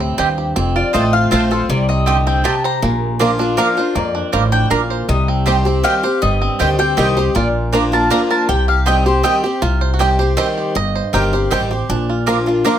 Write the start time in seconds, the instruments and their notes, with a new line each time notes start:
Already playing: upright bass D2, steel-string acoustic guitar A2 C3, five-string banjo G4 C5
0.00 five-string banjo C4
0.18 upright bass D#2, steel-string acoustic guitar G2, mandolin C4 G4 D#5 G5, five-string banjo C5
0.38 five-string banjo G4
0.56 upright bass F1, steel-string acoustic guitar F2, five-string banjo C4
0.76 five-string banjo F4, mandolin D5
0.93 upright bass A1, steel-string acoustic guitar F3 A3 C4 F4, mandolin C4 F4 C5 D#5 A5, five-string banjo C4
1.13 five-string banjo F4, mandolin F5
1.31 upright bass A#1, steel-string acoustic guitar F3 A3 C4 F4, mandolin C4 F4 C5 A5, five-string banjo C5
1.51 steel-string acoustic guitar C4 F4, five-string banjo A4, mandolin C5
1.69 upright bass C2, steel-string acoustic guitar C3, five-string banjo G3, mandolin D5
1.89 five-string banjo C4, mandolin D#5
2.06 steel-string acoustic guitar D3, mandolin C4 G4 D#5 G5, five-string banjo G4
2.27 five-string banjo C4, mandolin G5
2.44 steel-string acoustic guitar C3, mandolin C4 G4 D#5 G5 A5, five-string banjo G4
2.64 five-string banjo C5, mandolin A#5
2.82 upright bass A#1, steel-string acoustic guitar A#2, five-string banjo A#3
3.19 steel-string acoustic guitar F3 A#3 D4 F4, mandolin D4 A#4 F5 A#5, five-string banjo F4
3.39 five-string banjo D4, steel-string acoustic guitar D4 F4
3.57 steel-string acoustic guitar F3 A#3 D4 F4, mandolin D4 A#4 F5 A#5, five-string banjo A#4
3.77 steel-string acoustic guitar D4 F4, five-string banjo C5
3.95 upright bass F2, steel-string acoustic guitar F2, five-string banjo A#3, mandolin D5
4.15 five-string banjo D4
4.32 upright bass A1, steel-string acoustic guitar A2, mandolin D4 A#4 F5 A#5, five-string banjo C5
4.52 five-string banjo D4, mandolin G5
4.70 upright bass A#1, steel-string acoustic guitar A#2, mandolin D4 A#4 F5 A#5, five-string banjo A#4
4.90 five-string banjo C5
5.08 upright bass C2, steel-string acoustic guitar C3, five-string banjo G3, mandolin D#5
5.28 five-string banjo C4
5.46 steel-string acoustic guitar D#3 G3 C4 G4, mandolin C4 G4 D#5 G5, five-string banjo C5
5.65 five-string banjo C4, steel-string acoustic guitar C4 G4
5.83 steel-string acoustic guitar D#3 G3 C4 G4, mandolin C4 G4 D#5 F5 G5, five-string banjo G4
6.03 steel-string acoustic guitar C4 G4, five-string banjo C5
6.22 upright bass G1, steel-string acoustic guitar G2, five-string banjo G3, mandolin D#5
6.42 five-string banjo C4
6.59 upright bass D2, steel-string acoustic guitar D#3 G3 C4 G4, mandolin C4 G4 D#5 G5, five-string banjo C5
6.79 five-string banjo C4, steel-string acoustic guitar C4 G4, mandolin G5
6.97 upright bass C2, steel-string acoustic guitar D#3 G3 C4 G4, mandolin C4 G4 D#5 G5, five-string banjo G4
7.17 steel-string acoustic guitar C4 G4, five-string banjo C5
7.35 upright bass A#1, steel-string acoustic guitar A#2, five-string banjo F4, mandolin D5
7.72 steel-string acoustic guitar F3 A#3 D4 F4, mandolin D4 A#4 F5 A#5, five-string banjo D4
7.92 steel-string acoustic guitar D4 F4, five-string banjo A#4, mandolin A5
8.10 steel-string acoustic guitar F3 A#3 D4 F4, mandolin D4 A#4 F5 A#5, five-string banjo D4
8.31 five-string banjo A#4, mandolin A5
8.49 upright bass C2, steel-string acoustic guitar C3, five-string banjo G4, mandolin G5
8.68 five-string banjo G4, mandolin F5
8.86 steel-string acoustic guitar D#3 G3 C4 G4, mandolin C4 G4 D#5 G5, five-string banjo C4
9.06 steel-string acoustic guitar C4 G4, five-string banjo G4, mandolin C5
9.23 steel-string acoustic guitar D#3 G3 C4 G4, mandolin C4 G4 D#5 G5, five-string banjo C4
9.43 steel-string acoustic guitar C4 G4, five-string banjo G4
9.62 upright bass C2, steel-string acoustic guitar C3, five-string banjo F4
9.81 five-string banjo C5
9.94 five-string banjo F#4
9.99 steel-string acoustic guitar D#3 G3 C4 G4, mandolin C4 G4 D#5 G5, five-string banjo G4
10.19 steel-string acoustic guitar C4 G4, five-string banjo C5
10.37 steel-string acoustic guitar D#3 G3 C4 G4, mandolin C4 G4 D#5 G5, five-string banjo C5
10.58 five-string banjo G4
10.75 upright bass G1, steel-string acoustic guitar G2, five-string banjo D#5
10.95 five-string banjo C5
11.13 upright bass G1, steel-string acoustic guitar D#3 G3 C4 G4, mandolin C4 G4 D#5 G5, five-string banjo A#4
11.33 steel-string acoustic guitar C4 G4, five-string banjo C5
11.51 upright bass A1, steel-string acoustic guitar D#3 G3 C4 G4, mandolin C4 G4 D#5 G5, five-string banjo C5
11.71 steel-string acoustic guitar C4 G4, five-string banjo G4
11.89 upright bass A#1, steel-string acoustic guitar A#2, five-string banjo D4
12.10 five-string banjo F4
12.26 steel-string acoustic guitar F3 A#3 D4 F4, mandolin D4 A#4 F5 A#5, five-string banjo A#4
12.46 steel-string acoustic guitar D4 F4, five-string banjo F4
12.64 steel-string acoustic guitar F3 A#3 D4 F4, mandolin D4 A#4 F5 A#5, five-string banjo A#4